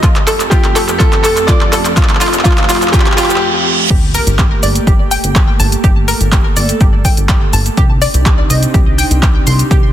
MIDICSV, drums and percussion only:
0, 0, Header, 1, 2, 480
1, 0, Start_track
1, 0, Key_signature, -2, "minor"
1, 0, Tempo, 483871
1, 33, Time_signature, 4, 2, 24, 8
1, 9849, End_track
2, 0, Start_track
2, 0, Title_t, "Drums"
2, 31, Note_on_c, 9, 36, 116
2, 33, Note_on_c, 9, 39, 95
2, 33, Note_on_c, 9, 42, 82
2, 34, Note_on_c, 9, 82, 35
2, 130, Note_off_c, 9, 36, 0
2, 132, Note_off_c, 9, 39, 0
2, 132, Note_off_c, 9, 42, 0
2, 133, Note_off_c, 9, 82, 0
2, 156, Note_on_c, 9, 39, 84
2, 156, Note_on_c, 9, 42, 38
2, 255, Note_off_c, 9, 39, 0
2, 255, Note_off_c, 9, 42, 0
2, 272, Note_on_c, 9, 39, 93
2, 272, Note_on_c, 9, 46, 101
2, 273, Note_on_c, 9, 82, 85
2, 371, Note_off_c, 9, 39, 0
2, 371, Note_off_c, 9, 46, 0
2, 372, Note_off_c, 9, 82, 0
2, 397, Note_on_c, 9, 39, 79
2, 397, Note_on_c, 9, 42, 54
2, 398, Note_on_c, 9, 82, 47
2, 496, Note_off_c, 9, 39, 0
2, 496, Note_off_c, 9, 42, 0
2, 497, Note_off_c, 9, 82, 0
2, 511, Note_on_c, 9, 36, 113
2, 513, Note_on_c, 9, 39, 94
2, 513, Note_on_c, 9, 42, 81
2, 514, Note_on_c, 9, 82, 34
2, 611, Note_off_c, 9, 36, 0
2, 612, Note_off_c, 9, 39, 0
2, 612, Note_off_c, 9, 42, 0
2, 613, Note_off_c, 9, 82, 0
2, 637, Note_on_c, 9, 39, 84
2, 637, Note_on_c, 9, 42, 38
2, 736, Note_off_c, 9, 39, 0
2, 736, Note_off_c, 9, 42, 0
2, 753, Note_on_c, 9, 39, 96
2, 753, Note_on_c, 9, 46, 101
2, 754, Note_on_c, 9, 82, 83
2, 852, Note_off_c, 9, 39, 0
2, 852, Note_off_c, 9, 46, 0
2, 853, Note_off_c, 9, 82, 0
2, 877, Note_on_c, 9, 39, 84
2, 877, Note_on_c, 9, 42, 54
2, 879, Note_on_c, 9, 82, 49
2, 977, Note_off_c, 9, 39, 0
2, 977, Note_off_c, 9, 42, 0
2, 978, Note_off_c, 9, 82, 0
2, 992, Note_on_c, 9, 36, 114
2, 993, Note_on_c, 9, 39, 98
2, 993, Note_on_c, 9, 42, 83
2, 994, Note_on_c, 9, 82, 36
2, 1091, Note_off_c, 9, 36, 0
2, 1092, Note_off_c, 9, 39, 0
2, 1092, Note_off_c, 9, 42, 0
2, 1094, Note_off_c, 9, 82, 0
2, 1117, Note_on_c, 9, 39, 84
2, 1117, Note_on_c, 9, 42, 38
2, 1216, Note_off_c, 9, 39, 0
2, 1216, Note_off_c, 9, 42, 0
2, 1233, Note_on_c, 9, 39, 96
2, 1233, Note_on_c, 9, 46, 101
2, 1234, Note_on_c, 9, 82, 82
2, 1332, Note_off_c, 9, 39, 0
2, 1332, Note_off_c, 9, 46, 0
2, 1333, Note_off_c, 9, 82, 0
2, 1356, Note_on_c, 9, 39, 84
2, 1356, Note_on_c, 9, 42, 53
2, 1357, Note_on_c, 9, 82, 45
2, 1455, Note_off_c, 9, 39, 0
2, 1455, Note_off_c, 9, 42, 0
2, 1457, Note_off_c, 9, 82, 0
2, 1472, Note_on_c, 9, 36, 113
2, 1473, Note_on_c, 9, 39, 100
2, 1473, Note_on_c, 9, 42, 83
2, 1474, Note_on_c, 9, 82, 37
2, 1571, Note_off_c, 9, 36, 0
2, 1572, Note_off_c, 9, 39, 0
2, 1572, Note_off_c, 9, 42, 0
2, 1573, Note_off_c, 9, 82, 0
2, 1596, Note_on_c, 9, 39, 89
2, 1695, Note_off_c, 9, 39, 0
2, 1712, Note_on_c, 9, 39, 100
2, 1712, Note_on_c, 9, 46, 100
2, 1713, Note_on_c, 9, 82, 83
2, 1811, Note_off_c, 9, 39, 0
2, 1811, Note_off_c, 9, 46, 0
2, 1813, Note_off_c, 9, 82, 0
2, 1836, Note_on_c, 9, 39, 90
2, 1836, Note_on_c, 9, 42, 57
2, 1838, Note_on_c, 9, 82, 48
2, 1936, Note_off_c, 9, 39, 0
2, 1936, Note_off_c, 9, 42, 0
2, 1937, Note_off_c, 9, 82, 0
2, 1952, Note_on_c, 9, 36, 115
2, 1952, Note_on_c, 9, 39, 105
2, 1952, Note_on_c, 9, 42, 86
2, 1953, Note_on_c, 9, 82, 35
2, 2013, Note_off_c, 9, 39, 0
2, 2013, Note_on_c, 9, 39, 92
2, 2051, Note_off_c, 9, 36, 0
2, 2051, Note_off_c, 9, 42, 0
2, 2053, Note_off_c, 9, 82, 0
2, 2075, Note_off_c, 9, 39, 0
2, 2075, Note_on_c, 9, 39, 92
2, 2075, Note_on_c, 9, 42, 38
2, 2133, Note_off_c, 9, 39, 0
2, 2133, Note_on_c, 9, 39, 93
2, 2174, Note_off_c, 9, 42, 0
2, 2191, Note_off_c, 9, 39, 0
2, 2191, Note_on_c, 9, 39, 100
2, 2191, Note_on_c, 9, 46, 101
2, 2192, Note_on_c, 9, 82, 81
2, 2252, Note_off_c, 9, 39, 0
2, 2252, Note_on_c, 9, 39, 90
2, 2290, Note_off_c, 9, 46, 0
2, 2291, Note_off_c, 9, 82, 0
2, 2315, Note_off_c, 9, 39, 0
2, 2315, Note_on_c, 9, 39, 88
2, 2315, Note_on_c, 9, 42, 54
2, 2317, Note_on_c, 9, 82, 48
2, 2372, Note_off_c, 9, 39, 0
2, 2372, Note_on_c, 9, 39, 91
2, 2414, Note_off_c, 9, 42, 0
2, 2416, Note_off_c, 9, 82, 0
2, 2431, Note_off_c, 9, 39, 0
2, 2431, Note_on_c, 9, 36, 112
2, 2431, Note_on_c, 9, 39, 101
2, 2431, Note_on_c, 9, 42, 81
2, 2432, Note_on_c, 9, 82, 35
2, 2492, Note_off_c, 9, 39, 0
2, 2492, Note_on_c, 9, 39, 90
2, 2530, Note_off_c, 9, 42, 0
2, 2531, Note_off_c, 9, 36, 0
2, 2531, Note_off_c, 9, 82, 0
2, 2555, Note_off_c, 9, 39, 0
2, 2555, Note_on_c, 9, 39, 93
2, 2555, Note_on_c, 9, 42, 39
2, 2613, Note_off_c, 9, 39, 0
2, 2613, Note_on_c, 9, 39, 94
2, 2654, Note_off_c, 9, 42, 0
2, 2672, Note_off_c, 9, 39, 0
2, 2672, Note_on_c, 9, 39, 106
2, 2672, Note_on_c, 9, 46, 101
2, 2673, Note_on_c, 9, 82, 82
2, 2734, Note_off_c, 9, 39, 0
2, 2734, Note_on_c, 9, 39, 94
2, 2771, Note_off_c, 9, 46, 0
2, 2772, Note_off_c, 9, 82, 0
2, 2796, Note_off_c, 9, 39, 0
2, 2796, Note_on_c, 9, 39, 93
2, 2796, Note_on_c, 9, 42, 57
2, 2798, Note_on_c, 9, 82, 46
2, 2854, Note_off_c, 9, 39, 0
2, 2854, Note_on_c, 9, 39, 91
2, 2896, Note_off_c, 9, 42, 0
2, 2897, Note_off_c, 9, 82, 0
2, 2911, Note_on_c, 9, 36, 116
2, 2912, Note_off_c, 9, 39, 0
2, 2912, Note_on_c, 9, 39, 106
2, 2912, Note_on_c, 9, 42, 85
2, 2913, Note_on_c, 9, 82, 36
2, 2974, Note_off_c, 9, 39, 0
2, 2974, Note_on_c, 9, 39, 96
2, 3010, Note_off_c, 9, 36, 0
2, 3011, Note_off_c, 9, 42, 0
2, 3013, Note_off_c, 9, 82, 0
2, 3036, Note_off_c, 9, 39, 0
2, 3036, Note_on_c, 9, 39, 96
2, 3036, Note_on_c, 9, 42, 38
2, 3093, Note_off_c, 9, 39, 0
2, 3093, Note_on_c, 9, 39, 95
2, 3136, Note_off_c, 9, 42, 0
2, 3151, Note_off_c, 9, 39, 0
2, 3151, Note_on_c, 9, 39, 109
2, 3151, Note_on_c, 9, 46, 99
2, 3153, Note_on_c, 9, 82, 83
2, 3213, Note_off_c, 9, 39, 0
2, 3213, Note_on_c, 9, 39, 95
2, 3251, Note_off_c, 9, 46, 0
2, 3252, Note_off_c, 9, 82, 0
2, 3275, Note_off_c, 9, 39, 0
2, 3275, Note_on_c, 9, 39, 92
2, 3275, Note_on_c, 9, 42, 54
2, 3276, Note_on_c, 9, 82, 45
2, 3334, Note_off_c, 9, 39, 0
2, 3334, Note_on_c, 9, 39, 92
2, 3374, Note_off_c, 9, 42, 0
2, 3376, Note_off_c, 9, 82, 0
2, 3433, Note_off_c, 9, 39, 0
2, 3872, Note_on_c, 9, 36, 121
2, 3872, Note_on_c, 9, 42, 57
2, 3872, Note_on_c, 9, 49, 106
2, 3873, Note_on_c, 9, 82, 34
2, 3971, Note_off_c, 9, 36, 0
2, 3971, Note_off_c, 9, 42, 0
2, 3971, Note_off_c, 9, 49, 0
2, 3972, Note_off_c, 9, 82, 0
2, 4111, Note_on_c, 9, 46, 107
2, 4112, Note_on_c, 9, 82, 80
2, 4210, Note_off_c, 9, 46, 0
2, 4211, Note_off_c, 9, 82, 0
2, 4236, Note_on_c, 9, 42, 68
2, 4237, Note_on_c, 9, 82, 45
2, 4335, Note_off_c, 9, 42, 0
2, 4336, Note_off_c, 9, 82, 0
2, 4352, Note_on_c, 9, 36, 114
2, 4352, Note_on_c, 9, 39, 125
2, 4353, Note_on_c, 9, 42, 54
2, 4354, Note_on_c, 9, 82, 33
2, 4451, Note_off_c, 9, 39, 0
2, 4452, Note_off_c, 9, 36, 0
2, 4452, Note_off_c, 9, 42, 0
2, 4453, Note_off_c, 9, 82, 0
2, 4592, Note_on_c, 9, 46, 107
2, 4593, Note_on_c, 9, 82, 78
2, 4691, Note_off_c, 9, 46, 0
2, 4693, Note_off_c, 9, 82, 0
2, 4717, Note_on_c, 9, 42, 71
2, 4718, Note_on_c, 9, 82, 46
2, 4816, Note_off_c, 9, 42, 0
2, 4817, Note_off_c, 9, 82, 0
2, 4832, Note_on_c, 9, 36, 119
2, 4833, Note_on_c, 9, 42, 55
2, 4834, Note_on_c, 9, 82, 35
2, 4932, Note_off_c, 9, 36, 0
2, 4932, Note_off_c, 9, 42, 0
2, 4934, Note_off_c, 9, 82, 0
2, 5071, Note_on_c, 9, 46, 107
2, 5073, Note_on_c, 9, 82, 78
2, 5171, Note_off_c, 9, 46, 0
2, 5172, Note_off_c, 9, 82, 0
2, 5196, Note_on_c, 9, 42, 68
2, 5197, Note_on_c, 9, 82, 43
2, 5295, Note_off_c, 9, 42, 0
2, 5296, Note_off_c, 9, 82, 0
2, 5312, Note_on_c, 9, 36, 120
2, 5312, Note_on_c, 9, 39, 127
2, 5313, Note_on_c, 9, 42, 56
2, 5315, Note_on_c, 9, 82, 35
2, 5412, Note_off_c, 9, 36, 0
2, 5412, Note_off_c, 9, 39, 0
2, 5412, Note_off_c, 9, 42, 0
2, 5414, Note_off_c, 9, 82, 0
2, 5552, Note_on_c, 9, 46, 105
2, 5554, Note_on_c, 9, 82, 80
2, 5652, Note_off_c, 9, 46, 0
2, 5653, Note_off_c, 9, 82, 0
2, 5677, Note_on_c, 9, 42, 71
2, 5678, Note_on_c, 9, 82, 46
2, 5776, Note_off_c, 9, 42, 0
2, 5777, Note_off_c, 9, 82, 0
2, 5792, Note_on_c, 9, 36, 127
2, 5793, Note_on_c, 9, 42, 56
2, 5794, Note_on_c, 9, 82, 33
2, 5892, Note_off_c, 9, 36, 0
2, 5892, Note_off_c, 9, 42, 0
2, 5893, Note_off_c, 9, 82, 0
2, 6032, Note_on_c, 9, 46, 113
2, 6034, Note_on_c, 9, 82, 78
2, 6132, Note_off_c, 9, 46, 0
2, 6133, Note_off_c, 9, 82, 0
2, 6157, Note_on_c, 9, 42, 67
2, 6158, Note_on_c, 9, 82, 44
2, 6256, Note_off_c, 9, 42, 0
2, 6257, Note_off_c, 9, 82, 0
2, 6272, Note_on_c, 9, 36, 121
2, 6272, Note_on_c, 9, 39, 124
2, 6272, Note_on_c, 9, 42, 54
2, 6274, Note_on_c, 9, 82, 33
2, 6371, Note_off_c, 9, 39, 0
2, 6372, Note_off_c, 9, 36, 0
2, 6372, Note_off_c, 9, 42, 0
2, 6373, Note_off_c, 9, 82, 0
2, 6513, Note_on_c, 9, 46, 113
2, 6514, Note_on_c, 9, 82, 79
2, 6612, Note_off_c, 9, 46, 0
2, 6614, Note_off_c, 9, 82, 0
2, 6636, Note_on_c, 9, 42, 66
2, 6637, Note_on_c, 9, 82, 44
2, 6735, Note_off_c, 9, 42, 0
2, 6737, Note_off_c, 9, 82, 0
2, 6752, Note_on_c, 9, 42, 54
2, 6753, Note_on_c, 9, 36, 120
2, 6753, Note_on_c, 9, 82, 34
2, 6851, Note_off_c, 9, 42, 0
2, 6852, Note_off_c, 9, 36, 0
2, 6852, Note_off_c, 9, 82, 0
2, 6992, Note_on_c, 9, 46, 111
2, 6993, Note_on_c, 9, 36, 65
2, 6993, Note_on_c, 9, 82, 76
2, 7091, Note_off_c, 9, 46, 0
2, 7092, Note_off_c, 9, 36, 0
2, 7092, Note_off_c, 9, 82, 0
2, 7116, Note_on_c, 9, 42, 66
2, 7117, Note_on_c, 9, 82, 43
2, 7215, Note_off_c, 9, 42, 0
2, 7216, Note_off_c, 9, 82, 0
2, 7231, Note_on_c, 9, 39, 127
2, 7232, Note_on_c, 9, 36, 123
2, 7232, Note_on_c, 9, 42, 56
2, 7233, Note_on_c, 9, 82, 33
2, 7330, Note_off_c, 9, 39, 0
2, 7331, Note_off_c, 9, 42, 0
2, 7332, Note_off_c, 9, 36, 0
2, 7332, Note_off_c, 9, 82, 0
2, 7472, Note_on_c, 9, 46, 109
2, 7473, Note_on_c, 9, 82, 76
2, 7571, Note_off_c, 9, 46, 0
2, 7572, Note_off_c, 9, 82, 0
2, 7597, Note_on_c, 9, 42, 70
2, 7598, Note_on_c, 9, 82, 45
2, 7696, Note_off_c, 9, 42, 0
2, 7697, Note_off_c, 9, 82, 0
2, 7712, Note_on_c, 9, 42, 54
2, 7713, Note_on_c, 9, 36, 127
2, 7713, Note_on_c, 9, 82, 33
2, 7811, Note_off_c, 9, 42, 0
2, 7812, Note_off_c, 9, 36, 0
2, 7812, Note_off_c, 9, 82, 0
2, 7952, Note_on_c, 9, 46, 108
2, 7954, Note_on_c, 9, 82, 73
2, 8051, Note_off_c, 9, 46, 0
2, 8053, Note_off_c, 9, 82, 0
2, 8077, Note_on_c, 9, 42, 64
2, 8078, Note_on_c, 9, 82, 42
2, 8176, Note_off_c, 9, 42, 0
2, 8177, Note_off_c, 9, 82, 0
2, 8192, Note_on_c, 9, 39, 121
2, 8193, Note_on_c, 9, 36, 126
2, 8193, Note_on_c, 9, 42, 51
2, 8194, Note_on_c, 9, 82, 32
2, 8291, Note_off_c, 9, 39, 0
2, 8292, Note_off_c, 9, 36, 0
2, 8292, Note_off_c, 9, 42, 0
2, 8293, Note_off_c, 9, 82, 0
2, 8433, Note_on_c, 9, 46, 115
2, 8434, Note_on_c, 9, 82, 74
2, 8532, Note_off_c, 9, 46, 0
2, 8533, Note_off_c, 9, 82, 0
2, 8557, Note_on_c, 9, 42, 63
2, 8558, Note_on_c, 9, 82, 44
2, 8656, Note_off_c, 9, 42, 0
2, 8657, Note_off_c, 9, 82, 0
2, 8673, Note_on_c, 9, 36, 122
2, 8673, Note_on_c, 9, 42, 54
2, 8675, Note_on_c, 9, 82, 32
2, 8772, Note_off_c, 9, 36, 0
2, 8773, Note_off_c, 9, 42, 0
2, 8774, Note_off_c, 9, 82, 0
2, 8914, Note_on_c, 9, 46, 111
2, 8916, Note_on_c, 9, 82, 74
2, 9013, Note_off_c, 9, 46, 0
2, 9015, Note_off_c, 9, 82, 0
2, 9037, Note_on_c, 9, 42, 63
2, 9039, Note_on_c, 9, 82, 42
2, 9136, Note_off_c, 9, 42, 0
2, 9138, Note_off_c, 9, 82, 0
2, 9153, Note_on_c, 9, 36, 127
2, 9153, Note_on_c, 9, 39, 127
2, 9154, Note_on_c, 9, 42, 54
2, 9155, Note_on_c, 9, 82, 34
2, 9252, Note_off_c, 9, 36, 0
2, 9252, Note_off_c, 9, 39, 0
2, 9253, Note_off_c, 9, 42, 0
2, 9255, Note_off_c, 9, 82, 0
2, 9393, Note_on_c, 9, 46, 110
2, 9394, Note_on_c, 9, 82, 75
2, 9492, Note_off_c, 9, 46, 0
2, 9493, Note_off_c, 9, 82, 0
2, 9516, Note_on_c, 9, 42, 68
2, 9518, Note_on_c, 9, 82, 44
2, 9615, Note_off_c, 9, 42, 0
2, 9617, Note_off_c, 9, 82, 0
2, 9633, Note_on_c, 9, 36, 127
2, 9633, Note_on_c, 9, 42, 52
2, 9635, Note_on_c, 9, 82, 34
2, 9732, Note_off_c, 9, 36, 0
2, 9732, Note_off_c, 9, 42, 0
2, 9734, Note_off_c, 9, 82, 0
2, 9849, End_track
0, 0, End_of_file